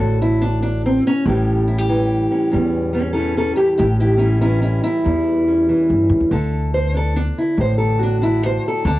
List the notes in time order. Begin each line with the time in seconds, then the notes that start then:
Already playing: D3 D4 A4
0.00 A1 A2 F#4
0.22 E4
0.42 D4
0.62 D4
0.86 C4
1.07 C#4
1.25 A1 A2 E3 G3 C#4 G4
1.68 E4
1.78 G4
1.89 E3
2.31 C#4
2.52 E2 G3
2.93 G3 C#4 A4
3.13 E3 C#4 A4
3.37 C#4 A4
3.56 E4 G4
3.78 A1 A2 E4 G4
4.00 E4 G4
4.17 C#4 E4
4.22 G3
4.41 E3 C#4 E4
4.61 C#4 E4
4.84 G3 E4
5.05 E2 G3
5.48 C#4
5.69 E3
5.90 G2
6.10 F#2
6.20 E2
6.31 D2 D3 A4
6.74 C5
6.94 D4 A4
7.16 D4
7.38 E4
7.57 A1 A2 C5
7.78 A4
7.99 D4 F#4
8.22 D4 E4
8.46 C5
8.68 A4
8.85 D2 D3 D4